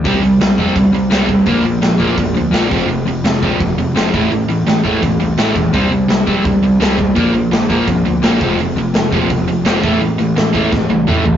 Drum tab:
HH |oooooooo|oooooooo|oooooooo|oooooooo|
SD |--o---o-|--o---o-|--o---o-|--o---o-|
T1 |--------|--------|--------|--------|
T2 |--------|--------|--------|--------|
FT |--------|--------|--------|--------|
BD |o--oo--o|o--oo--o|---oo--o|---oo--o|

HH |oooooooo|oooooooo|oooooooo|oooo----|
SD |--o---o-|--o---o-|--o---o-|--o-o---|
T1 |--------|--------|--------|-----o--|
T2 |--------|--------|--------|------o-|
FT |--------|--------|--------|-------o|
BD |o--oo--o|o--oo--o|---oo--o|---oo---|